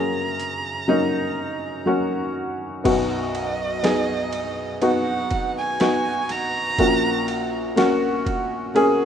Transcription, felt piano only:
Already playing: F#2 C#3 F#3 A#3 C#4 G#4
0.88 F#3 A#3 C#4 D#4
1.86 F#3 A#3 C#4 F#4
2.84 B1 F#2 B3 D#4 F#4
3.83 B3 D#4 G#4
4.82 B3 D#4 F#4
5.80 B3 D#4 F#4
6.79 A#1 A#2 A#3 C#4 F#4
7.76 A#3 C#4 F#4
8.75 A#3 C#4 G#4

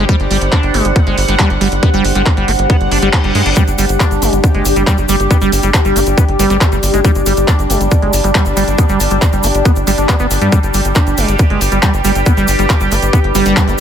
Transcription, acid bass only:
0.09 G3
0.31 G3
0.52 D4
0.74 G#3
0.85 G3
1.07 G#3
1.28 G3
1.39 G3
1.61 G3
1.83 B3
1.94 G3
2.15 G3
2.37 G3
2.48 B3
2.70 B3
2.92 D4
3.02 G3
3.24 G3
3.35 G#3
3.46 D4
3.57 G3
3.78 G3
4.00 D4
4.22 G#3
4.33 G3
4.55 G#3
4.76 G3
4.87 G3
5.09 G3
5.31 B3
5.42 G3
5.63 G3
5.85 G3
5.96 B3
6.18 B3
6.39 G3
6.50 G3
6.72 G3
6.94 G#3
7.05 G3
7.26 G3
7.48 D4
7.70 G#3
7.81 G3
8.02 G#3
8.24 G3
8.35 G3
8.57 G3
8.78 B3
8.89 G3
9.11 G3
9.33 G3
9.44 B3
9.65 B3
9.87 G3
9.98 D4
10.09 B3
10.20 B3
10.42 G3
10.52 G3
10.74 G3
10.96 D4
11.18 G#3
11.28 G3
11.50 G#3
11.72 G3
11.83 G3
12.05 G3
12.26 B3
12.37 G3
12.59 G3
12.81 G3
12.91 B3
13.13 B3
13.35 G3
13.46 G3
13.68 B3

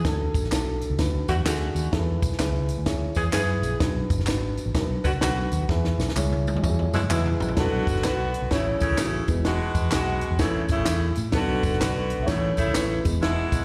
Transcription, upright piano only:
0.05 D4 F#4 A4
0.52 D4 E4 A4
0.58 F#4
0.98 D4 F4 B4
1.04 F#4
1.45 D4 F#4 G#4
1.92 E4 G#4 A4
1.99 B4
2.38 E4 G#4 B4
2.86 E4 G#4 C#5
3.33 E4 G#4 B4
3.80 D4 F#4 B4
4.27 D4 F#4 B4
4.74 D4 F#4 A#4
4.81 B4
5.22 D4 F#4 B4
5.69 E4 G#4 B4
6.16 E4 G#4 C#5
6.62 E4 F#4 C#5
6.68 G#4
7.09 E4 G#4 B4
7.57 F#3 B3 D4 A4
8.04 B4
8.51 E3 A3 C#4 C#5
9.00 F#4
9.28 E3 G#3 B3
10.39 E3 A3 C#4
11.34 F#3 B3 D4 A4
11.80 B4
12.22 C#5 E5
12.27 E3 A3 C#4
12.74 B4
13.04 E3 G#3 B3

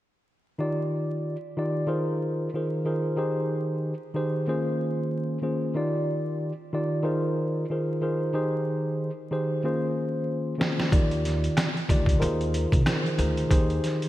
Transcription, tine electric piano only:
0.58 D#3 D#4 F4 G4 D5
1.57 D#3 D#4 F4 G4 D5
1.87 D#3 D#4 F4 G#4 A#4 C5
2.54 D#3 D#4 F4 G#4 A#4 C5
2.85 D#3 D#4 F4 G#4 A#4 C5
3.17 D#3 D#4 G4 G#4 C5
4.14 D#3 D#4 G4 G#4 C5
4.47 D#3 A#3 C#4 F4 G#4 C5
5.42 D#3 A#3 C#4 F4 G#4 C5
5.75 D#3 D#4 F4 G4 D5
6.73 D#3 D#4 F4 G4 D5
7.03 D#3 D#4 F4 G#4 A#4 C5
7.70 D#3 D#4 F4 G#4 A#4 C5
8.01 D#3 D#4 F4 G#4 A#4 C5
8.33 D#3 D#4 G4 G#4 C5
9.31 D#3 D#4 G4 G#4 C5
9.64 D#3 A#3 C#4 F4 G#4 C5
10.58 D#3 A#3 C#4 F4 G#4 C5
10.91 D#3 D#4 F4 G4 D5
11.89 D#3 D#4 F4 G4 D5
12.19 D#3 D#4 F4 G#4 A#4 C5
12.86 D#3 D#4 F4 G#4 A#4 C5
13.17 D#3 D#4 F4 G#4 A#4 C5
13.49 D#3 D#4 G4 G#4 C5

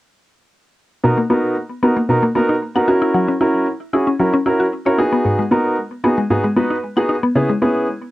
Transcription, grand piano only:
1.04 B3 D#4 F#4 A#4
1.30 B3 D#4 F#4 A#4
1.83 B3 D#4 F#4 A#4
2.09 B3 D#4 F#4 A#4
2.35 B3 D#4 F#4 A#4
2.75 B3 D#4 F#4 A#4
2.88 C#4 E4 F#4 A#4
3.40 C#4 E4 F#4 A#4
3.93 C#4 E4 F#4 G#4
4.19 C#4 E4 F#4 A#4
4.46 C#4 E4 F#4 A#4
4.86 C#4 E4 F#4 A#4
4.98 B3 D#4 F#4 G#4
5.51 B3 D#4 F#4 A#4
6.04 B3 D#4 F#4 G#4
6.30 B3 D#4 F#4 G#4
6.56 B3 D#4 F#4 B4
6.97 B3 D#4 F#4 G#4
7.35 B3 C#4 E4 G#4
7.62 B3 C#4 E4 G#4

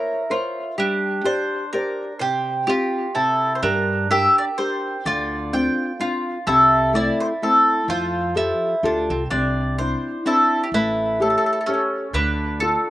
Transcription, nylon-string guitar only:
Already playing: A#4 C5 C#5
0.30 A#4 C5 C#5
0.78 G3
1.24 G4 C5 D5
1.73 G4 C5 D5
2.20 C3
2.67 C4 F4 G4
3.15 C3
3.63 G3
4.11 D4 G4 A#4
4.58 D4 G4 A#4
5.05 D3
5.53 C4 D4 F4
5.99 C4 D4 F4
6.47 C3
6.93 A3 C4 E4
7.42 A3 C4 E4
7.88 F3
8.35 F3 G4 A4
8.84 F4 G4 A4
9.32 C3
9.79 C4 D4 E4
10.25 C4 D4 E4
10.74 A3
11.20 G4 A4 C#5
11.68 G4 A4 C#5
12.15 D3
12.62 D4 F4 A4

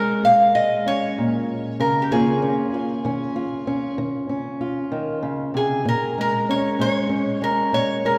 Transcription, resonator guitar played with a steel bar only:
Already playing: A#4
0.25 F5
0.55 D#5
0.88 C#5
1.80 A#4
2.02 G4
2.12 G#4
5.57 G#4
5.88 A#4
6.21 A#4
6.51 C#5
6.81 C#5
7.44 A#4
7.74 C#5
8.06 A#4

